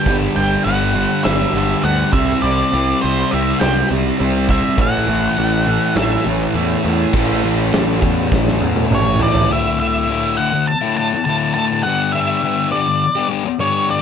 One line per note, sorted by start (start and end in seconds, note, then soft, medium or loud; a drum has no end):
0.00 0.14 G5 medium
0.06 0.26 G1 medium
0.06 0.36 G2 medium
0.06 0.37 D3 medium
0.06 0.37 G3 medium
0.06 kick loud
0.06 open hi-hat medium
0.36 0.56 G1 medium
0.36 0.65 G2 medium
0.36 0.65 D3 medium
0.36 0.67 G3 medium
0.36 0.64 G5 medium
0.64 1.05 G1 medium
0.64 0.94 G2 medium
0.64 0.95 D3 medium
0.64 0.96 G3 medium
0.64 1.24 F#5 medium
0.64 open hi-hat medium
0.95 1.23 G2 medium
0.95 1.24 D3 medium
0.95 1.25 G3 medium
1.24 1.45 G1 medium
1.24 1.53 G2 medium
1.24 1.54 D3 loud
1.24 1.54 G3 loud
1.24 1.84 E5 medium
1.24 snare loud
1.24 open hi-hat medium
1.53 1.73 G1 medium
1.53 1.83 G2 medium
1.53 1.84 D3 medium
1.53 1.84 G3 medium
1.84 2.03 D2 medium
1.84 2.12 G2 medium
1.84 2.12 D3 medium
1.84 2.12 G3 loud
1.84 2.12 F#5 medium
1.84 open hi-hat medium
2.13 2.33 C2 medium
2.13 2.41 C3 medium
2.13 2.42 G3 medium
2.13 2.42 C4 medium
2.13 2.41 E5 medium
2.13 kick loud
2.42 2.63 C2 medium
2.42 2.73 C3 medium
2.42 2.74 G3 medium
2.42 2.74 C4 loud
2.42 2.97 D5 medium
2.42 open hi-hat medium
2.73 2.93 C2 medium
2.73 3.02 C3 medium
2.73 3.03 G3 medium
2.73 3.03 C4 medium
3.01 3.23 C2 medium
3.01 3.32 C3 medium
3.01 3.33 G3 medium
3.01 3.32 C5 medium
3.01 open hi-hat medium
3.05 3.33 C4 medium
3.31 3.52 C2 medium
3.31 3.62 C3 medium
3.31 3.62 G3 medium
3.31 3.63 C4 medium
3.31 3.59 E5 medium
3.60 3.82 C2 loud
3.60 3.90 C3 loud
3.60 3.91 G3 medium
3.60 3.88 G5 medium
3.60 snare loud
3.60 open hi-hat medium
3.64 3.92 C4 loud
3.91 4.10 C2 medium
3.91 4.18 C3 medium
3.91 4.19 G3 medium
3.91 4.20 C4 medium
4.19 4.59 C2 medium
4.19 4.48 C3 medium
4.19 4.49 G3 medium
4.19 4.49 C4 loud
4.19 open hi-hat medium
4.49 4.77 C3 medium
4.49 4.78 G3 medium
4.49 4.78 C4 medium
4.49 4.77 E5 medium
4.49 kick medium
4.78 4.98 A1 medium
4.78 5.07 A2 medium
4.78 5.07 E3 medium
4.78 5.08 A3 loud
4.78 6.02 F#5 medium
4.78 kick loud
4.78 open hi-hat medium
5.08 5.28 A1 medium
5.08 5.36 A2 medium
5.08 5.37 E3 loud
5.08 5.37 A3 loud
5.37 5.77 A1 medium
5.37 5.66 A2 medium
5.37 5.66 E3 medium
5.37 5.66 A3 medium
5.37 open hi-hat medium
5.67 5.96 A2 medium
5.67 5.96 E3 medium
5.67 5.97 A3 medium
5.96 6.16 A1 medium
5.96 6.25 A2 medium
5.96 6.26 E3 loud
5.96 6.27 A3 loud
5.96 6.24 E5 medium
5.96 snare loud
5.96 open hi-hat medium
6.26 6.45 A1 medium
6.26 6.55 A2 medium
6.26 6.56 E3 medium
6.26 6.56 A3 medium
6.54 6.74 E2 medium
6.54 6.85 A2 medium
6.54 6.85 E3 medium
6.54 6.86 A3 loud
6.54 open hi-hat medium
6.85 7.05 E2 medium
6.85 7.13 A2 medium
6.85 7.13 E3 medium
6.85 7.14 A3 medium
7.13 7.39 A1 medium
7.13 9.19 A2 medium
7.13 9.19 E3 medium
7.13 9.19 A3 medium
7.13 9.19 C#4 medium
7.13 9.19 E4 medium
7.13 9.19 A4 medium
7.13 kick loud
7.13 crash loud
7.13 crash medium
7.44 7.69 A1 medium
7.73 7.99 A1 medium
7.73 snare loud
7.73 crash medium
8.02 8.28 E2 medium
8.02 kick medium
8.32 8.58 A1 medium
8.32 kick loud
8.32 snare medium
8.48 snare medium
8.61 8.87 E2 medium
8.76 high tom medium
8.91 9.17 A1 medium
8.91 9.22 C#5 medium
8.91 mid tom medium
9.19 9.45 A1 medium
9.19 9.48 A2 medium
9.19 9.49 E3 medium
9.19 9.49 A3 medium
9.19 9.48 C#4 medium
9.19 9.48 E4 medium
9.19 9.48 A4 medium
9.19 9.52 D5 medium
9.19 floor tom medium
9.35 floor tom loud
9.48 10.08 D2 medium
9.48 9.79 A2 medium
9.48 9.80 D3 loud
9.48 9.82 A3 medium
9.48 9.81 E4 loud
9.53 9.79 E5 medium
9.80 10.08 A2 medium
9.80 10.09 D3 medium
9.80 10.11 A3 medium
9.80 10.10 E4 medium
9.80 10.40 E5 loud
10.09 10.67 D2 medium
10.09 10.36 A2 loud
10.09 10.37 D3 medium
10.09 10.39 A3 loud
10.09 10.39 E4 loud
10.37 10.52 A2 medium
10.37 10.52 D3 medium
10.37 10.52 A3 medium
10.37 10.51 E4 medium
10.37 10.67 F#5 loud
10.52 muted distorted electric guitar stroke medium
10.68 10.96 A5 loud
10.81 10.97 D3 medium
10.81 10.97 A3 medium
10.81 10.98 E4 medium
10.96 11.13 A2 medium
10.96 11.13 D3 medium
10.96 11.13 A3 medium
10.96 11.13 E4 medium
10.96 11.24 A5 loud
11.14 muted distorted electric guitar stroke medium
11.25 11.83 D2 loud
11.25 11.54 A2 loud
11.25 11.55 D3 loud
11.25 11.56 A3 loud
11.25 11.57 E4 loud
11.25 11.53 A5 loud
11.54 11.83 A2 medium
11.54 11.72 D3 medium
11.54 11.71 A3 medium
11.54 11.70 E4 medium
11.54 11.83 A5 medium
11.71 11.84 D3 medium
11.71 11.84 A3 medium
11.71 11.83 E4 medium
11.83 12.41 G2 medium
11.83 12.42 D3 loud
11.83 12.13 G3 medium
11.83 12.15 B3 medium
11.83 12.11 F#5 loud
11.87 12.16 D4 loud
11.87 12.16 G4 loud
12.12 12.43 G3 medium
12.12 12.44 B3 medium
12.12 12.45 D4 medium
12.12 12.67 E5 loud
12.17 12.44 G4 medium
12.42 13.01 G2 loud
12.42 13.01 D3 loud
12.42 12.71 G3 loud
12.42 12.73 B3 loud
12.42 12.73 D4 loud
12.42 12.73 G4 loud
12.72 12.87 G3 medium
12.72 12.87 B3 medium
12.72 12.86 D4 medium
12.72 12.86 G4 medium
12.72 13.26 D5 medium
12.87 muted distorted electric guitar stroke soft
13.15 13.27 G3 medium
13.15 13.28 B3 medium
13.15 13.29 D4 medium
13.15 13.30 G4 medium
13.28 13.45 G3 medium
13.28 13.45 B3 medium
13.28 13.44 D4 medium
13.28 13.44 G4 medium
13.45 muted distorted electric guitar stroke soft
13.59 14.02 G2 loud
13.59 14.02 D3 loud
13.59 13.87 G3 loud
13.59 13.89 B3 loud
13.59 13.90 D4 loud
13.59 13.90 G4 loud
13.59 13.90 C#5 medium
13.89 14.02 G3 medium
13.89 14.02 B3 medium
13.89 14.02 D4 medium
13.89 14.01 G4 medium
13.89 14.02 D5 medium